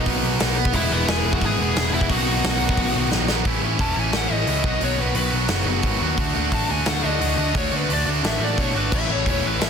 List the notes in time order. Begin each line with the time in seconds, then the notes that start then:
Already playing: B2 F#3 B3 D#4
0.06 B1, kick, open hi-hat
0.23 B1
0.39 B1 B2 F#3 B3 D#4, snare, open hi-hat
0.65 kick
0.73 E1 E3 G#3 B3 E4 E5, kick, open hi-hat
0.91 E1 B3 B4
1.08 E1 G#4 G#5, snare
1.24 E1
1.33 F#4 F#5, kick
1.41 G#1 G#4 G#5, kick, open hi-hat
1.58 E1
1.76 E1, snare, open hi-hat
1.93 E1 E3 G#3 B3 E4 E5
2.01 kick
2.09 B1 B2 D#3 F#3 B3 D#4 F#4 F#5, kick, open hi-hat
2.44 B1, snare, open hi-hat
2.62 B1
2.69 kick
2.77 B1, kick, open hi-hat
2.96 B1
3.12 A#1, snare
3.28 B2 D#3 F#3 B3 D#4, snare
3.45 A1 A2 E3 A3 C#4 E4, kick, open hi-hat
3.63 A1 A2 E3 A3 C#4 E4
3.79 E1 A2 E3 A3 C#4 E4 A5, kick, open hi-hat
3.97 A1 A2 E3 A3 C#4 E4 G#5
4.13 A1 A2 E3 A3 C#4 E4 F#5, snare, open hi-hat
4.30 A1 A2 E3 A3 C#4 E4 D#5
4.47 C#2 A2 E3 A3 C#4 E4, open hi-hat
4.64 B1 B2 D#3 F#3 B3 F#4, kick
4.80 B1 B2 D#3 F#3 B3 F#4 C#5, open hi-hat
4.97 B1 B2 D#3 F#3 B3 F#4 B4
5.15 B1 B2 D#3 F#3 B3 F#4 B4, open hi-hat
5.33 B1 B2 D#3 F#3 B3 F#4
5.48 F#1 B2 D#3 F#3 B3 F#4, snare, open hi-hat
5.66 F#1 B2 D#3 F#3 B3
5.70 F#4
5.83 G#2 B2 D#3 F#3 B3 F#4, kick, open hi-hat
6.01 D#2 B2 D#3 F#3 B3 F#4
6.17 D2 D3 A3 D4 F#4, kick, open hi-hat
6.35 D2 D3 A3 D4 F#4
6.52 A1 D3 A3 D4 F#4 A5, kick, open hi-hat
6.69 D2 D3 A3 D4 F#4 G#5
6.85 D2 D3 A3 D4 F#4 F#5, snare, open hi-hat
7.03 D2 D3 A3 D4 F#4 D#5
7.20 D2 D3 A3 D4 F#4, open hi-hat
7.37 D2 D3 A3 D4 F#4
7.53 D2 D3 A3 D4 F#4, kick, open hi-hat
7.57 C#5
7.71 D2 D3 A3 D4 F#4
7.77 B4
7.89 D2 D3 A3 D4 F#4, open hi-hat
7.93 D5
8.06 D2 D3 A3 D4 F#4
8.23 A1 D3 A3 D4 F#4 E5, snare, open hi-hat
8.40 A1 D3 A3 D4 F#4 D5
8.57 B2 D3 A3 D4 F#4 C#5, kick, open hi-hat
8.74 G#1 D3 A3 D4 F#4 B4
8.91 A1 A2 E3 A3 C#4 E4 E5, kick, crash
9.08 A1 A2 E3 A3 C#4 E4 C#5
9.26 E1 A2 E3 A3 C#4 E4 C#5, kick, open hi-hat
9.42 A1 A2 E3 A3 C#4 E4
9.47 B4
9.59 A1 A2 E3 A3 C#4 E4 E5, snare, open hi-hat